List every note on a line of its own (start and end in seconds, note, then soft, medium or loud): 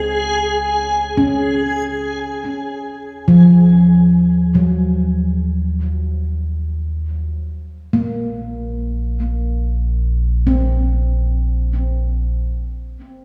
0.00 2.82 C#2 medium
0.00 1.86 C4 soft
0.00 2.87 G#4 medium
0.00 2.88 G#5 medium
1.17 3.24 C#4 soft
2.85 7.88 D#2 medium
3.28 6.50 F3 medium
4.55 7.77 F#3 soft
7.93 12.96 A#1 medium
7.93 11.15 A#3 soft
10.47 13.25 C4 soft
13.00 13.25 F#1 medium